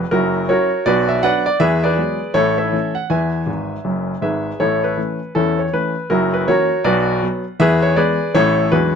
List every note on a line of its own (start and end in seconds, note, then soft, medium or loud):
0.00 0.10 B4 medium
0.11 0.43 F#1 medium
0.11 0.43 F#2 medium
0.11 0.47 E4 medium
0.11 0.47 F#4 medium
0.11 0.48 A#4 medium
0.49 0.69 F#3 soft
0.49 0.70 C#4 soft
0.49 0.70 E4 soft
0.49 0.84 F#4 medium
0.49 0.84 A#4 medium
0.49 0.86 C#5 medium
0.86 1.18 B1 medium
0.86 1.18 B2 medium
0.86 1.09 F#4 medium
0.86 1.09 B4 medium
0.86 1.10 D5 medium
1.09 1.23 E5 medium
1.23 1.44 F#3 soft
1.23 1.44 B3 soft
1.23 1.44 D4 soft
1.23 1.46 B4 medium
1.23 1.45 D5 medium
1.23 1.47 F#5 loud
1.46 1.60 D5 medium
1.60 1.92 E2 medium
1.60 1.92 E3 medium
1.60 1.83 G#4 medium
1.60 1.83 B4 medium
1.60 1.84 E5 loud
1.84 2.32 G#4 medium
1.84 2.32 B4 medium
1.84 2.35 D5 medium
1.97 2.18 F#3 soft
1.97 2.18 G#3 soft
1.97 2.19 B3 soft
2.34 2.67 A1 medium
2.34 2.67 A2 medium
2.34 2.57 E4 medium
2.34 2.58 A4 medium
2.34 2.57 C#5 medium
2.58 2.94 A4 medium
2.58 2.94 C#5 medium
2.58 2.96 E5 medium
2.72 2.93 E3 soft
2.72 2.93 A3 soft
2.72 2.94 C#4 soft
2.95 3.10 F#5 medium
3.10 3.42 E2 medium
3.10 3.42 E3 soft
3.10 4.19 B4 medium
3.10 4.19 E5 medium
3.10 4.23 G#5 medium
3.46 3.75 G#1 medium
3.46 3.75 G#2 soft
3.85 4.13 F#1 medium
3.85 4.13 F#2 medium
4.22 4.50 G#1 soft
4.22 4.50 G#2 medium
4.22 4.58 G#4 soft
4.22 4.58 B4 medium
4.22 4.60 E5 medium
4.60 4.92 A1 medium
4.60 4.92 A2 medium
4.60 4.83 E4 medium
4.60 4.83 A4 medium
4.60 4.84 C#5 medium
4.84 5.35 B4 medium
4.97 5.18 E3 soft
4.97 5.18 A3 soft
4.97 5.19 C#4 soft
5.35 5.67 E2 medium
5.35 5.67 E3 medium
5.35 5.58 C#4 medium
5.35 5.58 E4 medium
5.35 5.59 A4 medium
5.59 5.73 C#5 medium
5.73 5.94 E3 soft
5.73 5.94 A3 soft
5.73 5.94 C#4 soft
5.73 6.11 B4 medium
6.10 6.42 F#1 medium
6.10 6.42 F#2 medium
6.10 6.33 E4 medium
6.10 6.33 F#4 medium
6.10 6.34 A#4 medium
6.34 6.48 B4 medium
6.47 6.68 E3 soft
6.47 6.69 A#3 soft
6.47 6.69 C#4 soft
6.47 6.83 F#4 medium
6.47 6.83 A#4 medium
6.47 6.85 C#5 medium
6.84 7.17 B1 medium
6.84 7.17 B2 medium
6.84 7.20 F#4 medium
6.84 7.20 B4 medium
6.84 7.22 D5 medium
7.23 7.43 F#3 soft
7.23 7.43 B3 soft
7.59 7.92 E2 medium
7.59 7.91 E3 medium
7.59 7.82 G#4 medium
7.59 7.82 B4 medium
7.59 7.83 E5 loud
7.82 7.97 C#5 medium
7.96 8.17 E3 soft
7.96 8.18 G#3 soft
7.96 8.18 B3 medium
7.96 8.32 G#4 medium
7.96 8.32 B4 medium
7.96 8.34 D5 medium
8.35 8.66 A1 medium
8.35 8.67 A2 medium
8.35 8.55 E3 soft
8.35 8.56 A3 medium
8.35 8.56 C#4 medium
8.35 8.70 E4 medium
8.35 8.70 A4 medium
8.35 8.72 C#5 loud
8.72 8.95 E2 medium
8.72 8.95 E3 medium
8.72 8.93 F#3 soft
8.72 8.93 G#3 soft
8.72 8.93 D4 soft
8.72 8.94 F#4 medium
8.72 8.95 G#4 medium
8.72 8.95 B4 medium